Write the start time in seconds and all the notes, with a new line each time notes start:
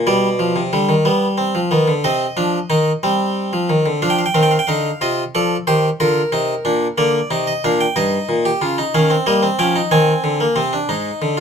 0.07 B2 G3 D5
0.39 F3
0.56 C3
0.73 D3 G3
0.89 D#3
1.05 G3 B3
1.38 C4
1.55 F3
1.71 D#3 B3
1.88 D3
2.04 C3 C4 D#5
2.37 F3 D4
2.70 D#3 D#4
3.03 G3 C4
3.53 F3
3.69 D#3
3.86 D3
4.02 F3 D4 F5
4.10 G5
4.18 F5
4.26 G5
4.34 D#3 C4 F5
4.43 G5
4.51 F5
4.59 G5
4.67 D3 D#4 F5
5.01 C3 F4 D#5
5.35 F3 A4 D5
5.67 D#3 G4 C5
6.00 D3 F4 A#4
6.32 C3 D#4
6.65 A#2 D4
6.98 D3 A#3 D5
7.31 C3 D#4
7.47 D#5
7.64 A#2 D4 F5
7.81 G5
7.96 G2 D#4 D#5
8.29 A#2
8.45 G4
8.61 C#3 F4
8.78 D#4
8.95 D#3 C#4 F5
9.10 C4
9.26 G3 A#3 D#5
9.43 C4
9.59 F3 C#4 G5
9.76 D#4
9.91 D#3 C4 G#5
10.24 D3
10.40 A#3
10.56 C3 C4
10.73 D4
10.89 G#2 D#4
11.22 D3